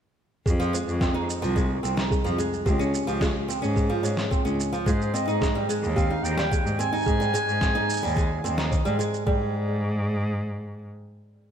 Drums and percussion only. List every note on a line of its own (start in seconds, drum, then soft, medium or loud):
0.46 kick loud
0.46 shaker soft
0.61 shaker soft
0.75 shaker medium
0.88 shaker soft
1.01 kick medium
1.01 snare medium
1.01 shaker soft
1.30 shaker medium
1.43 shaker soft
1.56 kick medium
1.56 shaker soft
1.84 shaker medium
1.97 snare medium
1.97 shaker soft
2.11 kick medium
2.11 shaker soft
2.26 shaker soft
2.39 shaker medium
2.53 shaker soft
2.66 kick loud
2.66 shaker soft
2.81 shaker soft
2.94 shaker medium
3.08 shaker soft
3.21 kick loud
3.21 snare medium
3.21 shaker soft
3.50 shaker medium
3.63 shaker soft
3.76 kick medium
3.76 shaker soft
4.04 shaker medium
4.17 snare medium
4.17 shaker soft
4.31 kick loud
4.31 shaker soft
4.46 shaker soft
4.60 shaker medium
4.74 shaker soft
4.86 kick loud
4.86 shaker soft
5.02 shaker soft
5.15 shaker medium
5.29 shaker soft
5.41 kick medium
5.41 snare medium
5.41 shaker soft
5.70 shaker medium
5.84 shaker soft
5.96 kick loud
5.96 shaker soft
6.25 shaker medium
6.38 snare medium
6.38 shaker soft
6.51 kick loud
6.51 shaker soft
6.66 shaker soft
6.80 shaker medium
6.94 shaker soft
6.96 shaker soft
6.98 shaker soft
7.00 shaker soft
7.03 shaker soft
7.05 kick loud
7.05 shaker soft
7.07 shaker soft
7.21 shaker soft
7.35 shaker medium
7.49 shaker soft
7.61 kick loud
7.61 snare medium
7.61 shaker soft
7.90 shaker medium
7.93 shaker medium
7.97 shaker soft
8.00 shaker soft
8.04 shaker soft
8.07 shaker soft
8.10 shaker soft
8.14 kick loud
8.14 shaker soft
8.18 shaker soft
8.45 shaker medium
8.58 snare medium
8.58 shaker soft
8.72 kick loud
8.72 shaker soft
8.86 shaker soft
9.00 shaker medium
9.14 shaker soft
9.27 kick loud